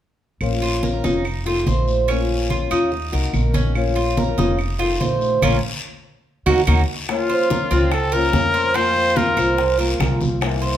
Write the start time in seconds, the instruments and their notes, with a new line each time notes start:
0.41 upright bass A#1, steel-string acoustic guitar F3 A#3 C#4 F4, high conga, long guiro, claves
0.62 cuban tres F4, high conga
0.83 cuban tres A#4, high conga, short guiro
1.04 upright bass F1, steel-string acoustic guitar A#3 C#4 F4, cuban tres D#4, high conga, short guiro
1.25 muted steel-string acoustic guitar stroke, high conga, long guiro, claves
1.45 steel-string acoustic guitar D#3 A3 C4 F4, cuban tres F4, high conga
1.66 upright bass A#1, steel-string acoustic guitar D#3 A3 C4 F4, cuban tres C5, high conga, short guiro
1.87 high conga, short guiro
2.08 steel-string acoustic guitar F3 A#3 C#4 F4, cuban tres C#4, high conga, long guiro, claves
2.30 high conga
2.50 cuban tres F4, high conga, short guiro
2.70 upright bass D#2, steel-string acoustic guitar A#3 C#4 F4, cuban tres D#4, high conga, short guiro, claves
2.91 muted steel-string acoustic guitar stroke, high conga, long guiro
3.12 upright bass C2, steel-string acoustic guitar A#3 D#4 F#4, cuban tres A#4, high conga
3.33 upright bass A#1, steel-string acoustic guitar D#3 A#3 D#4 F#4, high conga, short guiro, claves
3.54 cuban tres C#4, high conga, short guiro
3.75 steel-string acoustic guitar F3 A#3 C#4 F4, high conga, long guiro, claves
3.96 cuban tres F4, high conga
4.17 cuban tres A#4, high conga, short guiro
4.38 upright bass F1, steel-string acoustic guitar A#3 C#4 F4, cuban tres D#4, high conga, short guiro
4.58 muted steel-string acoustic guitar stroke, high conga, long guiro, claves
4.79 steel-string acoustic guitar D#3 A3 C4 F4, cuban tres F4, high conga
4.99 upright bass A#1, steel-string acoustic guitar D#3 A3 C4 F4, cuban tres C5, high conga, short guiro
5.21 high conga, short guiro
5.42 upright bass A#1, steel-string acoustic guitar F3 A#3 C#4, cuban tres C#4 F4 A#4, high conga, long guiro, claves
6.46 upright bass D#2, steel-string acoustic guitar F#3 A#3 D#4, cuban tres A#3 D#4 F#4, high conga, long guiro, claves
6.67 upright bass D#2, steel-string acoustic guitar F#3 A#3 D#4, cuban tres A#3 D#4 F#4, high conga, long guiro, claves
7.08 steel-string acoustic guitar F3 A#3 C#4 F4 C5, trumpet F4, high bongo, high conga, long guiro, claves
7.29 cuban tres C5, high conga
7.50 cuban tres A#4, high bongo, high conga, short guiro
7.71 upright bass C#2, steel-string acoustic guitar A#3 C#4 F4 C5, cuban tres C4, high conga, short guiro
7.92 trumpet A4, muted steel-string acoustic guitar stroke, high bongo, high conga, long guiro, claves
8.12 steel-string acoustic guitar A#3 C#4 F4 C5, cuban tres A#4, trumpet A#4, high conga
8.33 upright bass F2, steel-string acoustic guitar A#3 C#4 F4 C5, high bongo, low bongo, high conga, short guiro
8.54 cuban tres C5, high conga, short guiro
8.74 steel-string acoustic guitar F3 A#3 C4 F4, cuban tres C4, trumpet C5, high bongo, high conga, long guiro, claves
8.96 high bongo, high conga
9.16 cuban tres F4, trumpet A#4, high bongo, high conga, short guiro
9.37 upright bass C2, steel-string acoustic guitar A#3 C4 F4, cuban tres C5, high bongo, high conga, short guiro, claves
9.57 muted steel-string acoustic guitar stroke, high bongo, high conga, long guiro
9.78 steel-string acoustic guitar A#3 C4 F4, cuban tres A#4, high conga
9.99 upright bass C2, steel-string acoustic guitar F3 A#3 C4 F4, high bongo, low bongo, high conga, short guiro, claves
10.21 high bongo, high conga, short guiro
10.41 steel-string acoustic guitar C3 E3 A#3 C4 E4, high bongo, high conga, long guiro, claves
10.62 cuban tres C5, high conga